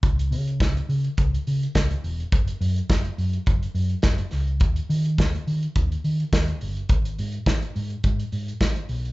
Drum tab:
HH |xxoxxxoxxxoxxxox|xxoxxxoxxxoxxxox|xxoxxxoxxxoxxxox|xxoxxxoxxxoxxxox|
SD |----o-------o---|----o-------o-o-|----o-------o---|----o-------o---|
BD |o---o---o---o---|o---o---o---o---|o---o---o---o---|o---o---o---o---|